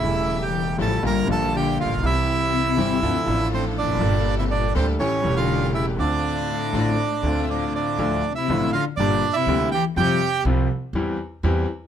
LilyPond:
<<
  \new Staff \with { instrumentName = "Bandoneon" } { \time 4/4 \key d \minor \tempo 4 = 121 << { e''8. g''8. a''8 bes''8 a''8 g''8 f''8 | e''2. c''8 d''8~ | d''8. e''16 d''8 c''8 cis''8. f''8. e''8 | d''2~ d''8.~ d''32 e''32 d''8 d''8~ |
d''8. e''8. f''8 d''8. e''8. g''8 | g''4 r2. | } \\ { e'8. g'8. a'8 bes'8 a'8 g'8 f'8 | e'2. c'8 d'8~ | d'8. e'16 d'8 c'8 cis'8. f'8. e'8 | d'2. d'8 d'8~ |
d'8. e'8. f'8 d'8. e'8. g'8 | g'4 r2. | } >> }
  \new Staff \with { instrumentName = "String section" } { \time 4/4 \key d \minor <a cis' g'>4. <a cis' g'>8 <bes f' g'>8 <bes f' g'>4. | <c' e' g'>4. <c' e' g'>8 <d' f' a'>8 <d' f' a'>4. | <bes g' a'>4. <bes g' a'>8 <a cis' g'>8 <a cis' g'>4. | <c' d' f'>4. <c' d' f'>8 r8 <c' d' f'>4. |
r1 | r1 | }
  \new Staff \with { instrumentName = "Grand piano" } { \clef bass \time 4/4 \key d \minor << { <e,, e, cis g a e'>4. <a,, a, cis g a e'>8 <bes,, bes, d g bes f'>8 <bes,, bes, d g bes f'>4. | <c, c e g c' g'>4. <g,, g, e g c' g'>8 <d, d f a d' a'>8 <a,, a, f a d' a'>4. | <g,, g, g bes d' a'>4. <d, d g bes d' a'>8 <a,, a, e a cis' g'>8 <e,, e, g a cis' g'>4. | <d, d a c' f'>4. <a,, a, d a c' f'>8 r8 <d, d a c' f'>4. |
<d, d f a f'>8 r8 <a,, a, d f a f'>8 r8 <g,, g, d g bes g'>8 r8 <d, d g bes g'>8 r8 | <f, f g c' g'>8 r8 <c, c f g c' g'>8 r8 <e, e g c' g'>8 r8 <e, e g c' g'>8 r8 | } \\ { r2. r8 r32 a,,32 bes,,32 b,,32 | r2. r8 r32 e,32 f,32 fis,32 | r1 | r1 |
r1 | r1 | } >> }
  \new Staff \with { instrumentName = "Cello" } { \clef bass \time 4/4 \key d \minor cis8. e8. f8 g8 f8 d8 d8 | c2. a,8 bes,8~ | bes,8. c16 bes,8 a,8 a,8. d8. cis8 | a,2~ a,8.~ a,32 c32 a,8 a,8~ |
a,8. c8. d8 bes,8. c8. e8 | c4 r2. | }
  \new Staff \with { instrumentName = "Upright bass" } { \clef bass \time 4/4 \key d \minor e,,4~ e,,16. r32 a,,16. r32 bes,,16. r32 bes,,4~ bes,,32 a,,32 bes,,32 b,,32 | c,4~ c,16. r32 g,,16. r32 d,16. r32 a,,4~ a,,32 e,,32 f,,32 fis,,32 | g,,4~ g,,16. r32 d,16. r32 a,,16. r32 e,,4~ e,,16. r32 | d,4~ d,16. r32 a,,16. r8 r32 d,4~ d,16. r32 |
d,16. r8 r32 a,,16. r8 r32 g,,16. r8 r32 d,16. r8 r32 | f,16. r8 r32 c,16. r8 r32 e,16. r8 r32 e,16. r8 r32 | }
>>